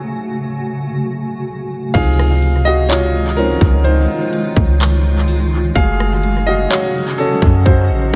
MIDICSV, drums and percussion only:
0, 0, Header, 1, 2, 480
1, 0, Start_track
1, 0, Key_signature, -5, "major"
1, 0, Tempo, 952381
1, 981, Time_signature, 4, 2, 24, 8
1, 4111, End_track
2, 0, Start_track
2, 0, Title_t, "Drums"
2, 981, Note_on_c, 9, 36, 119
2, 981, Note_on_c, 9, 42, 68
2, 981, Note_on_c, 9, 49, 107
2, 1031, Note_off_c, 9, 36, 0
2, 1031, Note_off_c, 9, 42, 0
2, 1031, Note_off_c, 9, 49, 0
2, 1106, Note_on_c, 9, 37, 93
2, 1156, Note_off_c, 9, 37, 0
2, 1220, Note_on_c, 9, 42, 72
2, 1271, Note_off_c, 9, 42, 0
2, 1459, Note_on_c, 9, 42, 80
2, 1467, Note_on_c, 9, 39, 127
2, 1510, Note_off_c, 9, 42, 0
2, 1517, Note_off_c, 9, 39, 0
2, 1700, Note_on_c, 9, 46, 56
2, 1751, Note_off_c, 9, 46, 0
2, 1820, Note_on_c, 9, 36, 100
2, 1871, Note_off_c, 9, 36, 0
2, 1939, Note_on_c, 9, 42, 80
2, 1989, Note_off_c, 9, 42, 0
2, 2181, Note_on_c, 9, 42, 76
2, 2232, Note_off_c, 9, 42, 0
2, 2301, Note_on_c, 9, 36, 100
2, 2351, Note_off_c, 9, 36, 0
2, 2420, Note_on_c, 9, 42, 81
2, 2427, Note_on_c, 9, 39, 112
2, 2470, Note_off_c, 9, 42, 0
2, 2477, Note_off_c, 9, 39, 0
2, 2660, Note_on_c, 9, 46, 75
2, 2710, Note_off_c, 9, 46, 0
2, 2900, Note_on_c, 9, 42, 67
2, 2901, Note_on_c, 9, 36, 112
2, 2951, Note_off_c, 9, 36, 0
2, 2951, Note_off_c, 9, 42, 0
2, 3026, Note_on_c, 9, 37, 93
2, 3076, Note_off_c, 9, 37, 0
2, 3141, Note_on_c, 9, 42, 72
2, 3191, Note_off_c, 9, 42, 0
2, 3379, Note_on_c, 9, 42, 79
2, 3387, Note_on_c, 9, 39, 116
2, 3430, Note_off_c, 9, 42, 0
2, 3437, Note_off_c, 9, 39, 0
2, 3620, Note_on_c, 9, 46, 58
2, 3671, Note_off_c, 9, 46, 0
2, 3740, Note_on_c, 9, 36, 99
2, 3791, Note_off_c, 9, 36, 0
2, 3859, Note_on_c, 9, 42, 83
2, 3860, Note_on_c, 9, 36, 91
2, 3909, Note_off_c, 9, 42, 0
2, 3911, Note_off_c, 9, 36, 0
2, 4111, End_track
0, 0, End_of_file